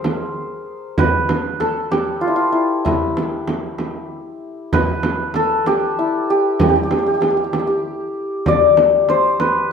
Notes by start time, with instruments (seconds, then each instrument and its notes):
Already playing: santur G#4 A#4 C5
0.04 frame drum
0.98 santur B4, frame drum
1.29 frame drum
1.60 santur A4, frame drum
1.91 santur G4, frame drum
2.21 santur F4
2.27 santur E4
2.36 santur F4
2.52 santur E4
2.85 santur E4, frame drum
3.17 frame drum
3.48 frame drum
3.79 frame drum
4.73 santur B4, frame drum
5.03 frame drum
5.34 santur A4, frame drum
5.66 santur G4, frame drum
5.99 santur E4
6.30 santur G4
6.60 santur G4, frame drum
6.69 santur G4
6.76 santur G4
6.83 santur G4
6.90 santur G4, frame drum
6.98 santur G4
7.06 santur G4
7.14 santur G4
7.21 santur G4, frame drum
7.30 santur G4
7.37 santur G4
7.44 santur G4
7.53 santur G4, frame drum
7.59 santur G4
7.67 santur G4
8.46 santur D5, frame drum
8.77 frame drum
9.09 santur C5, frame drum
9.40 santur B4, frame drum